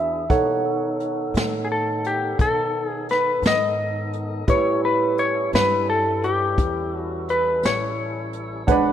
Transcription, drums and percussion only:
0.30 kick medium
0.30 closed hi-hat medium
1.00 closed hi-hat medium
1.35 snare medium
1.35 closed hi-hat medium
2.05 closed hi-hat medium
2.39 kick medium
2.39 closed hi-hat medium
3.09 snare soft
3.09 closed hi-hat medium
3.43 snare medium
3.43 closed hi-hat medium
4.13 closed hi-hat soft
4.48 kick loud
4.48 closed hi-hat medium
5.18 closed hi-hat medium
5.53 snare medium
5.53 closed hi-hat medium
6.23 closed hi-hat medium
6.58 kick medium
6.58 closed hi-hat medium
7.29 closed hi-hat medium
7.63 snare medium
7.63 closed hi-hat medium
8.33 closed hi-hat medium
8.68 kick medium
8.68 closed hi-hat medium

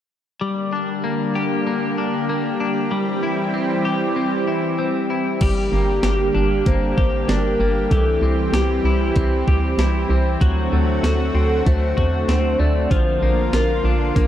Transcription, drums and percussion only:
5.41 kick loud
5.41 closed hi-hat medium
5.41 crash medium
6.03 snare medium
6.03 closed hi-hat medium
6.66 kick medium
6.66 closed hi-hat medium
6.98 kick medium
7.29 snare loud
7.29 closed hi-hat medium
7.91 kick medium
7.91 closed hi-hat medium
8.54 snare loud
8.54 closed hi-hat medium
9.16 kick medium
9.16 closed hi-hat medium
9.48 kick medium
9.79 snare medium
9.79 closed hi-hat medium
10.41 kick loud
10.41 closed hi-hat medium
11.04 snare loud
11.04 closed hi-hat medium
11.67 kick medium
11.67 closed hi-hat medium
11.98 kick medium
12.29 snare medium
12.29 closed hi-hat medium
12.91 kick loud
12.91 closed hi-hat medium
13.53 snare loud
13.53 closed hi-hat medium
14.16 kick medium
14.16 closed hi-hat medium

